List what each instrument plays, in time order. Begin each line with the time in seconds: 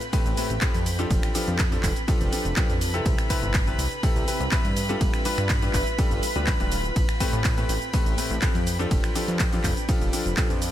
Already playing: ambient pad C4 B4 G5, violin section B4 B5
0.01 closed hi-hat, cabasa
0.13 grand piano A2 C4 G4 A4 B4, kick, closed hi-hat, open hi-hat, ride, cabasa
0.26 analog synth bass A1, closed hi-hat, cabasa
0.37 grand piano A2 C4 G4 A4 B4, open hi-hat, ride, cabasa
0.50 analog synth bass A1, snare, closed hi-hat, cabasa
0.61 grand piano F3 C4 G4 A4 B4, kick, snare, clap, closed hi-hat, ride, cabasa
0.74 analog synth bass F2, closed hi-hat, ride, cabasa
0.86 ambient pad D4, open hi-hat, ride, cabasa
0.99 grand piano F3 D4 F4 G4 A4, closed hi-hat, cabasa
1.11 analog synth bass F1, kick, closed hi-hat, ride, cabasa
1.23 finger snap, closed hi-hat, cabasa
1.35 grand piano F3 D4 F4 G4 A4, open hi-hat, ride, cabasa
1.41 ambient pad A4
1.48 analog synth bass F2, ride, cabasa
1.59 kick, snare, clap, closed hi-hat, ride, cabasa
1.72 grand piano F3 D4 F4 G4 A4, closed hi-hat, ride, cabasa
1.83 analog synth bass F1, kick, clap, open hi-hat, ride, cabasa
1.96 closed hi-hat, cabasa
2.08 grand piano F3 D4 F4 G4 A4, kick, closed hi-hat, ride, cabasa
2.21 analog synth bass F1, closed hi-hat, cabasa
2.32 grand piano F3 D4 F4 G4 A4, open hi-hat, ride, cabasa
2.45 analog synth bass F1, closed hi-hat, cabasa
2.56 grand piano F3 D4 F4 G4 A4, kick, snare, clap, closed hi-hat, ride, cabasa
2.70 analog synth bass F2, closed hi-hat, cabasa
2.81 snare, open hi-hat, ride, cabasa
2.94 grand piano C3 C4 E4 G4 A4, closed hi-hat, cabasa
3.06 analog synth bass C2, ambient pad C4, kick, closed hi-hat, ride, cabasa
3.18 finger snap, closed hi-hat, cabasa
3.30 grand piano C3 C4 E4 G4 B4, kick, open hi-hat, ride, cabasa
3.43 analog synth bass G1, cabasa
3.50 ambient pad E5
3.54 ambient pad B4, kick, snare, clap, closed hi-hat, ride, cabasa
3.67 grand piano C3 C4 E4 G4 B4, closed hi-hat, cabasa
3.79 analog synth bass C2, open hi-hat, ride, cabasa
3.92 closed hi-hat, cabasa
4.03 grand piano C3 C4 E4 G4 A4, kick, closed hi-hat, open hi-hat, ride, cabasa
4.16 analog synth bass C2, closed hi-hat, cabasa
4.28 grand piano C3 C4 E4 G4 B4, open hi-hat, ride, cabasa
4.40 analog synth bass C2, snare, closed hi-hat, cabasa
4.52 grand piano C4 E4 G4 B4, kick, snare, clap, closed hi-hat, ride, cabasa
4.65 analog synth bass G2, closed hi-hat, ride, cabasa
4.76 ambient pad F4, open hi-hat, ride, cabasa
4.89 grand piano G3 D4 F4 G4 A4, closed hi-hat, cabasa
5.01 analog synth bass G1, kick, closed hi-hat, ride, cabasa
5.14 finger snap, closed hi-hat, cabasa
5.25 grand piano G3 D4 F4 G4 B4, open hi-hat, ride, cabasa
5.38 analog synth bass G2, finger snap, ride, cabasa
5.49 kick, snare, clap, closed hi-hat, ride, cabasa
5.62 grand piano G3 D4 F4 G4 B4, closed hi-hat, ride, cabasa
5.73 analog synth bass G1, ambient pad G5, kick, clap, open hi-hat, ride, cabasa
5.87 closed hi-hat, cabasa
5.99 grand piano G3 D4 F4 G4 A4, kick, closed hi-hat, ride, cabasa
6.11 analog synth bass G1, closed hi-hat, cabasa
6.23 open hi-hat, ride, cabasa
6.36 analog synth bass D2, grand piano G3 D4 F4 G4 B4, closed hi-hat, cabasa
6.47 kick, snare, clap, closed hi-hat, ride, cabasa
6.60 analog synth bass D1, grand piano G3 D4 F4 G4 B4, closed hi-hat, cabasa
6.72 snare, open hi-hat, ride, cabasa
6.84 closed hi-hat, cabasa
6.96 analog synth bass A1, ambient pad C4, kick, closed hi-hat, ride, cabasa
7.09 finger snap, closed hi-hat, cabasa
7.20 grand piano A2 C4 G4 A4 B4, kick, open hi-hat, ride, cabasa
7.33 analog synth bass A2, closed hi-hat, cabasa
7.44 kick, snare, clap, closed hi-hat, ride, cabasa
7.57 grand piano A2 C4 G4 A4 B4, closed hi-hat, cabasa
7.69 analog synth bass A1, open hi-hat, ride, cabasa
7.82 closed hi-hat, cabasa
7.93 grand piano A2 C4 G4 A4 B4, kick, closed hi-hat, open hi-hat, ride, cabasa
8.06 analog synth bass A1, closed hi-hat, cabasa
8.18 grand piano A2 C4 G4 A4 B4, open hi-hat, ride, cabasa
8.31 analog synth bass A1, snare, cabasa
8.42 grand piano F3 C4 G4 A4 B4, kick, snare, clap, closed hi-hat, ride, cabasa
8.55 analog synth bass F2, closed hi-hat, ride, cabasa
8.66 ambient pad D4, open hi-hat, ride, cabasa
8.79 grand piano F3 D4 F4 G4 A4, closed hi-hat, cabasa
8.91 analog synth bass F1, kick, closed hi-hat, ride, cabasa
9.04 finger snap, closed hi-hat, cabasa
9.15 grand piano F3 D4 F4 G4 A4, open hi-hat, ride, cabasa
9.28 analog synth bass F2, ambient pad A4, closed hi-hat, ride, cabasa
9.39 kick, snare, clap, closed hi-hat, ride, cabasa
9.53 grand piano F3 D4 F4 G4 A4, closed hi-hat, ride, cabasa
9.64 analog synth bass F1, kick, clap, open hi-hat, ride, cabasa
9.77 closed hi-hat, cabasa
9.89 grand piano F3 D4 F4 G4 A4, kick, closed hi-hat, ride, cabasa
10.01 analog synth bass F1, closed hi-hat, cabasa
10.13 grand piano F3 D4 F4 G4 A4, open hi-hat, ride, cabasa
10.26 analog synth bass F1, closed hi-hat, cabasa
10.37 grand piano F3 D4 F4 G4 A4, kick, snare, clap, closed hi-hat, ride, cabasa
10.50 analog synth bass F2, closed hi-hat, cabasa
10.62 snare, open hi-hat, ride, cabasa